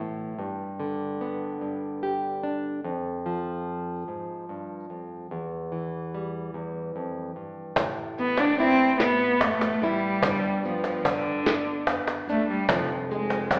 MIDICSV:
0, 0, Header, 1, 7, 480
1, 0, Start_track
1, 0, Tempo, 820793
1, 226, Time_signature, 6, 3, 24, 8
1, 7950, End_track
2, 0, Start_track
2, 0, Title_t, "Cello"
2, 0, Program_c, 0, 42
2, 4787, Note_on_c, 0, 59, 77
2, 4912, Note_on_c, 0, 62, 87
2, 4921, Note_off_c, 0, 59, 0
2, 5023, Note_off_c, 0, 62, 0
2, 5027, Note_on_c, 0, 60, 92
2, 5249, Note_off_c, 0, 60, 0
2, 5269, Note_on_c, 0, 59, 85
2, 5517, Note_on_c, 0, 57, 87
2, 5526, Note_off_c, 0, 59, 0
2, 5754, Note_on_c, 0, 55, 92
2, 5763, Note_off_c, 0, 57, 0
2, 6229, Note_off_c, 0, 55, 0
2, 6236, Note_on_c, 0, 53, 72
2, 6477, Note_on_c, 0, 50, 78
2, 6485, Note_off_c, 0, 53, 0
2, 6950, Note_off_c, 0, 50, 0
2, 7193, Note_on_c, 0, 57, 82
2, 7300, Note_off_c, 0, 57, 0
2, 7308, Note_on_c, 0, 55, 74
2, 7417, Note_off_c, 0, 55, 0
2, 7431, Note_on_c, 0, 53, 80
2, 7537, Note_off_c, 0, 53, 0
2, 7673, Note_on_c, 0, 56, 68
2, 7891, Note_off_c, 0, 56, 0
2, 7911, Note_on_c, 0, 55, 87
2, 7950, Note_off_c, 0, 55, 0
2, 7950, End_track
3, 0, Start_track
3, 0, Title_t, "Nylon-string guitar"
3, 0, Program_c, 1, 24
3, 0, Note_on_c, 1, 45, 53
3, 0, Note_on_c, 1, 52, 52
3, 0, Note_on_c, 1, 59, 42
3, 0, Note_on_c, 1, 64, 57
3, 193, Note_off_c, 1, 52, 0
3, 198, Note_off_c, 1, 59, 0
3, 225, Note_on_c, 1, 43, 63
3, 226, Note_off_c, 1, 45, 0
3, 226, Note_off_c, 1, 64, 0
3, 465, Note_on_c, 1, 50, 53
3, 708, Note_on_c, 1, 59, 47
3, 937, Note_off_c, 1, 43, 0
3, 944, Note_on_c, 1, 43, 51
3, 1187, Note_on_c, 1, 67, 49
3, 1424, Note_on_c, 1, 62, 51
3, 1636, Note_off_c, 1, 43, 0
3, 1636, Note_off_c, 1, 62, 0
3, 1637, Note_off_c, 1, 67, 0
3, 1638, Note_off_c, 1, 59, 0
3, 1663, Note_on_c, 1, 41, 61
3, 1665, Note_off_c, 1, 50, 0
3, 1906, Note_on_c, 1, 53, 49
3, 2383, Note_off_c, 1, 41, 0
3, 2386, Note_on_c, 1, 44, 51
3, 2625, Note_off_c, 1, 44, 0
3, 2627, Note_on_c, 1, 43, 51
3, 2863, Note_off_c, 1, 43, 0
3, 2866, Note_on_c, 1, 41, 49
3, 3077, Note_off_c, 1, 53, 0
3, 3104, Note_off_c, 1, 41, 0
3, 3106, Note_on_c, 1, 40, 59
3, 3344, Note_on_c, 1, 52, 49
3, 3594, Note_on_c, 1, 55, 46
3, 3819, Note_off_c, 1, 40, 0
3, 3826, Note_on_c, 1, 40, 52
3, 4066, Note_off_c, 1, 40, 0
3, 4068, Note_on_c, 1, 41, 50
3, 4302, Note_off_c, 1, 41, 0
3, 4304, Note_on_c, 1, 43, 49
3, 4516, Note_off_c, 1, 52, 0
3, 4545, Note_off_c, 1, 43, 0
3, 4545, Note_on_c, 1, 45, 74
3, 4549, Note_off_c, 1, 55, 0
3, 4790, Note_on_c, 1, 59, 50
3, 5030, Note_on_c, 1, 64, 58
3, 5260, Note_off_c, 1, 45, 0
3, 5504, Note_off_c, 1, 59, 0
3, 5511, Note_on_c, 1, 59, 57
3, 5744, Note_off_c, 1, 64, 0
3, 5751, Note_on_c, 1, 64, 54
3, 5959, Note_off_c, 1, 59, 0
3, 5986, Note_on_c, 1, 43, 69
3, 5987, Note_off_c, 1, 64, 0
3, 6230, Note_on_c, 1, 59, 55
3, 6467, Note_on_c, 1, 62, 48
3, 6697, Note_off_c, 1, 43, 0
3, 6940, Note_off_c, 1, 59, 0
3, 6947, Note_on_c, 1, 59, 54
3, 7185, Note_off_c, 1, 62, 0
3, 7190, Note_on_c, 1, 62, 59
3, 7396, Note_off_c, 1, 59, 0
3, 7398, Note_off_c, 1, 62, 0
3, 7426, Note_on_c, 1, 41, 73
3, 7669, Note_on_c, 1, 56, 55
3, 7909, Note_on_c, 1, 60, 51
3, 7950, Note_off_c, 1, 41, 0
3, 7950, Note_off_c, 1, 56, 0
3, 7950, Note_off_c, 1, 60, 0
3, 7950, End_track
4, 0, Start_track
4, 0, Title_t, "Upright bass"
4, 0, Program_c, 2, 32
4, 4541, Note_on_c, 2, 33, 80
4, 5239, Note_off_c, 2, 33, 0
4, 5262, Note_on_c, 2, 33, 83
4, 5720, Note_off_c, 2, 33, 0
4, 5740, Note_on_c, 2, 33, 84
4, 5970, Note_off_c, 2, 33, 0
4, 5983, Note_on_c, 2, 31, 89
4, 6679, Note_off_c, 2, 31, 0
4, 6703, Note_on_c, 2, 31, 90
4, 7159, Note_off_c, 2, 31, 0
4, 7178, Note_on_c, 2, 31, 74
4, 7408, Note_off_c, 2, 31, 0
4, 7424, Note_on_c, 2, 29, 89
4, 7950, Note_off_c, 2, 29, 0
4, 7950, End_track
5, 0, Start_track
5, 0, Title_t, "Cajon"
5, 4539, Note_on_c, 9, 36, 87
5, 4597, Note_off_c, 9, 36, 0
5, 4659, Note_on_c, 9, 38, 24
5, 4718, Note_off_c, 9, 38, 0
5, 4897, Note_on_c, 9, 38, 67
5, 4956, Note_off_c, 9, 38, 0
5, 5502, Note_on_c, 9, 36, 90
5, 5502, Note_on_c, 9, 38, 29
5, 5561, Note_off_c, 9, 36, 0
5, 5561, Note_off_c, 9, 38, 0
5, 5622, Note_on_c, 9, 38, 68
5, 5680, Note_off_c, 9, 38, 0
5, 5980, Note_on_c, 9, 36, 91
5, 6038, Note_off_c, 9, 36, 0
5, 6100, Note_on_c, 9, 38, 27
5, 6158, Note_off_c, 9, 38, 0
5, 6339, Note_on_c, 9, 38, 60
5, 6397, Note_off_c, 9, 38, 0
5, 6462, Note_on_c, 9, 36, 82
5, 6521, Note_off_c, 9, 36, 0
5, 6942, Note_on_c, 9, 36, 85
5, 6942, Note_on_c, 9, 38, 29
5, 7000, Note_off_c, 9, 36, 0
5, 7000, Note_off_c, 9, 38, 0
5, 7061, Note_on_c, 9, 38, 67
5, 7119, Note_off_c, 9, 38, 0
5, 7419, Note_on_c, 9, 36, 94
5, 7478, Note_off_c, 9, 36, 0
5, 7544, Note_on_c, 9, 38, 28
5, 7602, Note_off_c, 9, 38, 0
5, 7779, Note_on_c, 9, 38, 64
5, 7838, Note_off_c, 9, 38, 0
5, 7898, Note_on_c, 9, 36, 84
5, 7950, Note_off_c, 9, 36, 0
5, 7950, End_track
6, 0, Start_track
6, 0, Title_t, "Muted nylon-string guitar strokes"
6, 5265, Note_on_c, 9, 29, 64
6, 5323, Note_off_c, 9, 29, 0
6, 6704, Note_on_c, 9, 29, 60
6, 6762, Note_off_c, 9, 29, 0
6, 7950, End_track
7, 0, Start_track
7, 0, Title_t, "Drums"
7, 4542, Note_on_c, 9, 36, 81
7, 4542, Note_on_c, 9, 42, 59
7, 4600, Note_off_c, 9, 42, 0
7, 4601, Note_off_c, 9, 36, 0
7, 4783, Note_on_c, 9, 42, 42
7, 4842, Note_off_c, 9, 42, 0
7, 5024, Note_on_c, 9, 42, 45
7, 5082, Note_off_c, 9, 42, 0
7, 5262, Note_on_c, 9, 38, 82
7, 5262, Note_on_c, 9, 42, 63
7, 5263, Note_on_c, 9, 36, 60
7, 5320, Note_off_c, 9, 38, 0
7, 5320, Note_off_c, 9, 42, 0
7, 5321, Note_off_c, 9, 36, 0
7, 5503, Note_on_c, 9, 42, 45
7, 5561, Note_off_c, 9, 42, 0
7, 5746, Note_on_c, 9, 42, 50
7, 5804, Note_off_c, 9, 42, 0
7, 5984, Note_on_c, 9, 36, 83
7, 5986, Note_on_c, 9, 42, 61
7, 6043, Note_off_c, 9, 36, 0
7, 6044, Note_off_c, 9, 42, 0
7, 6225, Note_on_c, 9, 42, 46
7, 6283, Note_off_c, 9, 42, 0
7, 6464, Note_on_c, 9, 42, 52
7, 6522, Note_off_c, 9, 42, 0
7, 6703, Note_on_c, 9, 38, 84
7, 6703, Note_on_c, 9, 42, 70
7, 6704, Note_on_c, 9, 36, 59
7, 6762, Note_off_c, 9, 36, 0
7, 6762, Note_off_c, 9, 38, 0
7, 6762, Note_off_c, 9, 42, 0
7, 6944, Note_on_c, 9, 42, 50
7, 7002, Note_off_c, 9, 42, 0
7, 7184, Note_on_c, 9, 42, 51
7, 7243, Note_off_c, 9, 42, 0
7, 7423, Note_on_c, 9, 42, 73
7, 7424, Note_on_c, 9, 36, 90
7, 7481, Note_off_c, 9, 42, 0
7, 7483, Note_off_c, 9, 36, 0
7, 7665, Note_on_c, 9, 42, 47
7, 7724, Note_off_c, 9, 42, 0
7, 7904, Note_on_c, 9, 42, 50
7, 7950, Note_off_c, 9, 42, 0
7, 7950, End_track
0, 0, End_of_file